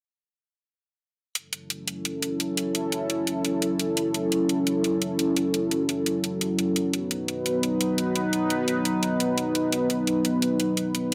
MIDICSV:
0, 0, Header, 1, 3, 480
1, 0, Start_track
1, 0, Tempo, 348837
1, 1862, Time_signature, 4, 2, 24, 8
1, 15331, End_track
2, 0, Start_track
2, 0, Title_t, "Analog synth pad"
2, 0, Program_c, 0, 89
2, 1860, Note_on_c, 0, 61, 71
2, 1860, Note_on_c, 0, 69, 85
2, 1861, Note_on_c, 0, 54, 78
2, 1861, Note_on_c, 0, 64, 69
2, 9486, Note_off_c, 0, 61, 0
2, 9486, Note_off_c, 0, 64, 0
2, 9486, Note_off_c, 0, 69, 0
2, 9540, Note_on_c, 0, 63, 70
2, 9541, Note_on_c, 0, 59, 70
2, 9541, Note_on_c, 0, 71, 84
2, 15331, Note_off_c, 0, 54, 0
2, 15331, Note_off_c, 0, 59, 0
2, 15331, Note_off_c, 0, 63, 0
2, 15331, Note_off_c, 0, 71, 0
2, 15331, End_track
3, 0, Start_track
3, 0, Title_t, "Drums"
3, 1861, Note_on_c, 9, 42, 79
3, 1999, Note_off_c, 9, 42, 0
3, 2101, Note_on_c, 9, 42, 92
3, 2239, Note_off_c, 9, 42, 0
3, 2341, Note_on_c, 9, 42, 72
3, 2479, Note_off_c, 9, 42, 0
3, 2581, Note_on_c, 9, 42, 90
3, 2718, Note_off_c, 9, 42, 0
3, 2822, Note_on_c, 9, 42, 76
3, 2959, Note_off_c, 9, 42, 0
3, 3061, Note_on_c, 9, 42, 94
3, 3199, Note_off_c, 9, 42, 0
3, 3302, Note_on_c, 9, 42, 78
3, 3439, Note_off_c, 9, 42, 0
3, 3541, Note_on_c, 9, 42, 94
3, 3679, Note_off_c, 9, 42, 0
3, 3781, Note_on_c, 9, 42, 76
3, 3919, Note_off_c, 9, 42, 0
3, 4021, Note_on_c, 9, 42, 91
3, 4159, Note_off_c, 9, 42, 0
3, 4262, Note_on_c, 9, 42, 72
3, 4399, Note_off_c, 9, 42, 0
3, 4501, Note_on_c, 9, 42, 90
3, 4639, Note_off_c, 9, 42, 0
3, 4741, Note_on_c, 9, 42, 72
3, 4879, Note_off_c, 9, 42, 0
3, 4982, Note_on_c, 9, 42, 88
3, 5119, Note_off_c, 9, 42, 0
3, 5222, Note_on_c, 9, 42, 78
3, 5359, Note_off_c, 9, 42, 0
3, 5461, Note_on_c, 9, 42, 91
3, 5599, Note_off_c, 9, 42, 0
3, 5702, Note_on_c, 9, 42, 72
3, 5840, Note_off_c, 9, 42, 0
3, 5942, Note_on_c, 9, 42, 89
3, 6080, Note_off_c, 9, 42, 0
3, 6183, Note_on_c, 9, 42, 70
3, 6320, Note_off_c, 9, 42, 0
3, 6423, Note_on_c, 9, 42, 87
3, 6560, Note_off_c, 9, 42, 0
3, 6663, Note_on_c, 9, 42, 72
3, 6800, Note_off_c, 9, 42, 0
3, 6902, Note_on_c, 9, 42, 83
3, 7040, Note_off_c, 9, 42, 0
3, 7142, Note_on_c, 9, 42, 77
3, 7279, Note_off_c, 9, 42, 0
3, 7382, Note_on_c, 9, 42, 82
3, 7520, Note_off_c, 9, 42, 0
3, 7622, Note_on_c, 9, 42, 75
3, 7760, Note_off_c, 9, 42, 0
3, 7862, Note_on_c, 9, 42, 86
3, 8000, Note_off_c, 9, 42, 0
3, 8103, Note_on_c, 9, 42, 67
3, 8240, Note_off_c, 9, 42, 0
3, 8343, Note_on_c, 9, 42, 88
3, 8480, Note_off_c, 9, 42, 0
3, 8583, Note_on_c, 9, 42, 69
3, 8720, Note_off_c, 9, 42, 0
3, 8823, Note_on_c, 9, 42, 82
3, 8960, Note_off_c, 9, 42, 0
3, 9062, Note_on_c, 9, 42, 72
3, 9200, Note_off_c, 9, 42, 0
3, 9302, Note_on_c, 9, 42, 77
3, 9440, Note_off_c, 9, 42, 0
3, 9542, Note_on_c, 9, 42, 74
3, 9680, Note_off_c, 9, 42, 0
3, 9782, Note_on_c, 9, 42, 87
3, 9919, Note_off_c, 9, 42, 0
3, 10022, Note_on_c, 9, 42, 68
3, 10159, Note_off_c, 9, 42, 0
3, 10262, Note_on_c, 9, 42, 89
3, 10399, Note_off_c, 9, 42, 0
3, 10501, Note_on_c, 9, 42, 67
3, 10639, Note_off_c, 9, 42, 0
3, 10741, Note_on_c, 9, 42, 81
3, 10879, Note_off_c, 9, 42, 0
3, 10981, Note_on_c, 9, 42, 76
3, 11119, Note_off_c, 9, 42, 0
3, 11222, Note_on_c, 9, 42, 79
3, 11359, Note_off_c, 9, 42, 0
3, 11461, Note_on_c, 9, 42, 77
3, 11598, Note_off_c, 9, 42, 0
3, 11700, Note_on_c, 9, 42, 90
3, 11837, Note_off_c, 9, 42, 0
3, 11940, Note_on_c, 9, 42, 76
3, 12078, Note_off_c, 9, 42, 0
3, 12181, Note_on_c, 9, 42, 88
3, 12318, Note_off_c, 9, 42, 0
3, 12421, Note_on_c, 9, 42, 73
3, 12559, Note_off_c, 9, 42, 0
3, 12661, Note_on_c, 9, 42, 89
3, 12799, Note_off_c, 9, 42, 0
3, 12901, Note_on_c, 9, 42, 79
3, 13039, Note_off_c, 9, 42, 0
3, 13141, Note_on_c, 9, 42, 82
3, 13279, Note_off_c, 9, 42, 0
3, 13381, Note_on_c, 9, 42, 82
3, 13518, Note_off_c, 9, 42, 0
3, 13621, Note_on_c, 9, 42, 94
3, 13758, Note_off_c, 9, 42, 0
3, 13860, Note_on_c, 9, 42, 73
3, 13998, Note_off_c, 9, 42, 0
3, 14101, Note_on_c, 9, 42, 92
3, 14238, Note_off_c, 9, 42, 0
3, 14341, Note_on_c, 9, 42, 76
3, 14479, Note_off_c, 9, 42, 0
3, 14581, Note_on_c, 9, 42, 88
3, 14718, Note_off_c, 9, 42, 0
3, 14821, Note_on_c, 9, 42, 78
3, 14959, Note_off_c, 9, 42, 0
3, 15062, Note_on_c, 9, 42, 89
3, 15200, Note_off_c, 9, 42, 0
3, 15331, End_track
0, 0, End_of_file